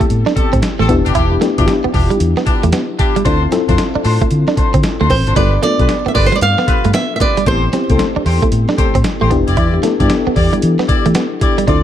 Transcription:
Already playing: B3 C4 E4 G4 A4
0.00 A3, kick, closed hi-hat
0.10 A2, closed hi-hat
0.26 D4, snare
0.36 C4 G4 A4, muted clean electric guitar stroke, muted fingered electric bass stroke, kick, closed hi-hat
0.53 A2 C4, kick, closed hi-hat
0.62 muted clean electric guitar stroke, snare, closed hi-hat
0.79 A1 A3 C4 G4 A4
0.89 B3 D4 E4 G4, kick, closed hi-hat
1.05 F1 D4 E4 G4, closed hi-hat
1.15 E1 D4 E4 G4, kick, closed hi-hat
1.32 muted clean electric guitar stroke
1.41 A3 B3 D4 E4 G4, snare, closed hi-hat
1.58 G1 B3 D4 E4 F4 G4, kick, closed hi-hat
1.66 G4, snare, closed hi-hat
1.84 B3, muted fingered electric bass stroke
1.94 E1 D4 E4 G4, muted clean electric guitar stroke, kick, open hi-hat
2.10 G3, closed hi-hat
2.20 E2, closed hi-hat
2.37 B3, snare
2.46 D4 E4 G4, muted clean electric guitar stroke, muted fingered electric bass stroke, kick, closed hi-hat
2.63 E2 A3, closed hi-hat
2.72 B3, snare, closed hi-hat
2.99 D4 E4 G4, muted clean electric guitar stroke, kick, closed hi-hat
3.16 G3, closed hi-hat
3.25 D2 C4 D4 E4 F4 A4 C5, kick, closed hi-hat
3.43 muted clean electric guitar stroke
3.52 C4 E4 F4 A4, snare, closed hi-hat
3.68 F2 C4 D4 E4 F4 A4 C5, kick, closed hi-hat
3.78 snare, closed hi-hat
3.95 D4, muted fingered electric bass stroke
4.04 A2 D4 F4 C5, muted clean electric guitar stroke, open hi-hat
4.21 A3, kick, closed hi-hat
4.31 D3, closed hi-hat
4.48 D4, snare
4.57 D4 F4 C5, muted clean electric guitar stroke, muted fingered electric bass stroke, kick, closed hi-hat
4.74 D3 C4, kick, closed hi-hat
4.83 muted clean electric guitar stroke, snare, closed hi-hat
5.00 D2 A3 D4 F4 C5
5.10 A1 C4 C5, kick, open hi-hat
5.26 G#1 D4 F4 C5, closed hi-hat
5.36 G1 G3 B3 D4 F4 G4 A4 B4 D5, kick, closed hi-hat
5.54 muted clean electric guitar stroke
5.63 A3 B3 D4 F4 A4 D5, snare, closed hi-hat
5.79 B1 B3 D4 F4 G4 A4 B4, kick, closed hi-hat
5.89 snare, closed hi-hat
6.06 B3 E5, muted fingered electric bass stroke
6.15 G1 F4 G4 B4 D5, muted clean electric guitar stroke, kick, open hi-hat
6.26 C5
6.32 G3 D5, closed hi-hat
6.41 G2 F5, closed hi-hat
6.58 B3, snare
6.68 F4 G4 B4, muted fingered electric bass stroke, muted clean electric guitar stroke, kick, closed hi-hat
6.84 G2 A3, closed hi-hat
6.94 B3 E5, snare, closed hi-hat
7.16 E5
7.20 F4 G4 B4 D5, muted clean electric guitar stroke, kick, closed hi-hat
7.37 G3, closed hi-hat
7.46 A1 A3 B3 C4 E4 G4 A4 C5, kick, closed hi-hat
7.64 muted clean electric guitar stroke
7.73 B3 C4 E4 G4, snare, closed hi-hat
7.90 C2 A3 C4 E4 G4 A4 C5, kick, closed hi-hat
7.99 snare, closed hi-hat
8.16 D4, muted fingered electric bass stroke
8.25 E2 G4 A4 C5, muted clean electric guitar stroke, open hi-hat
8.42 A3, kick, closed hi-hat
8.52 A2, closed hi-hat
8.69 D4, snare
8.78 G4 A4 C5, muted clean electric guitar stroke, muted fingered electric bass stroke, kick, closed hi-hat
8.95 A2 C4, kick, closed hi-hat
9.04 muted clean electric guitar stroke, snare, closed hi-hat
9.21 A1 A3 G4 A4 C5
9.31 E1 B3 D4 E4 G4, kick, closed hi-hat
9.47 F1 E4 G4 D5, closed hi-hat
9.57 E2 E4 G4 D5, kick, closed hi-hat
9.74 muted clean electric guitar stroke
9.83 A3 B3 D4 E4 A4, snare, closed hi-hat
10.00 G2 B3 D4 E4 G4 D5, kick, closed hi-hat
10.10 snare, closed hi-hat
10.27 B3, muted fingered electric bass stroke
10.36 E2 E4 G4 D5, muted clean electric guitar stroke, kick, open hi-hat
10.53 G3, closed hi-hat
10.62 E3, closed hi-hat
10.79 B3, snare
10.88 E4 G4 D5, muted clean electric guitar stroke, muted fingered electric bass stroke, kick, closed hi-hat
11.06 E3 A3, closed hi-hat
11.15 B3, snare, closed hi-hat
11.40 E4 G4 D5, muted clean electric guitar stroke, kick, closed hi-hat
11.58 G3, closed hi-hat
11.67 D2 C4 D4 E4 F4 A4 C5 D5, kick, closed hi-hat

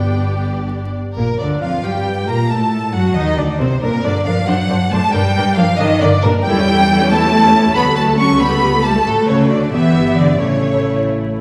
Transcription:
Already playing: G1 G2 B3 D4 G4 D5 G5
1.17 A#1 A#2 A#3 A#4
1.39 D2 D3 D4 D5
1.62 F2 F3 F4 F5
1.84 G2 G3 G4 G5
2.28 A#2 A#3 A#4 A#5
2.50 A2 A3 A4 A5
2.94 F#2 F#3 F#4 F#5
3.15 D#2 D#3 D#4 D#5
3.38 D2 D3 D4 D5
3.59 C2 C3 C4 C5
3.82 G2 A#2 D4 A#4
4.03 G2 D3 D4 A#4 D5
4.25 G2 F3 D4 A#4 F5
4.47 F#2 F#3 D4 C5 F#5
4.70 F#2 D4 C5
4.91 F#2 A3 D4 C5 A5
5.13 G2 G3 D4 A#4 G5
5.35 G2 D4 A#4
5.55 G2 F3 D4 A#4 F5
5.77 G2 D#3 D4 A#4 D#5
6.00 G2 D3 D4 A#4 D5
6.23 G2 A#2 D4 A#4
6.44 E2 G3 E4 A4 G5
6.57 C#4 G4
6.69 E4 A4
6.79 C#4 G4
6.90 E4 A4
7.01 C#4 G4
7.11 A3 E4 A4 A5
7.23 C#4 G4
7.33 E4 A4
7.44 C#4 G4
7.54 E4 A4
7.65 C#4 G4
7.76 D2 F#3 B3 F#4 B5
7.86 A3 A4
7.96 F#3 A3 F#4 A5
8.07 A3 A4
8.18 F#3 C#4 F#4 C#6
8.30 A3 A4
8.40 C#2 G3 B3 G4 B5
8.50 A3 A4
8.61 G3 G4
8.72 A3 A4
8.83 G3 A3 G4 A5
8.95 A3 A4
9.06 D2 A2 A3 F#4 A4
9.28 C#3 C#5
9.50 D3 D5
9.72 G1 E3 B3 G4 E5
10.17 D3 D5
10.39 A1 C#3 A3 E4 C#5

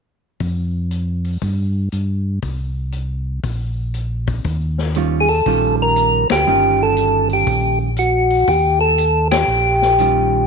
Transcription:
0.40 F2, kick, open hi-hat
0.91 closed hi-hat
1.25 open hi-hat
1.42 G2, kick, open hi-hat
1.92 G2, closed hi-hat
2.42 C2, kick, open hi-hat
2.92 closed hi-hat
3.43 A#1, kick, open hi-hat
3.94 closed hi-hat
4.27 kick, open hi-hat
4.44 D#2, kick, open hi-hat
4.78 snare
4.95 D#3 G3 C#4 F4, closed hi-hat
5.20 G#4
5.28 A4, open hi-hat
5.46 A#1 D#3 G3 C#4 F4, kick, open hi-hat
5.82 A#4
5.96 closed hi-hat
6.30 D2 G4, snare, ride
6.47 G1 D#3 G3 C#4 F4
6.83 A4
6.97 closed hi-hat
7.29 open hi-hat
7.33 G4
7.47 A#1, kick, open hi-hat
7.96 F#4, closed hi-hat
8.30 open hi-hat
8.47 D#2 G4, kick, open hi-hat
8.81 A4
8.98 closed hi-hat
9.31 G4, snare, ride
9.48 A#1
9.82 snare
9.99 D#3 G3 C#4 F4, closed hi-hat

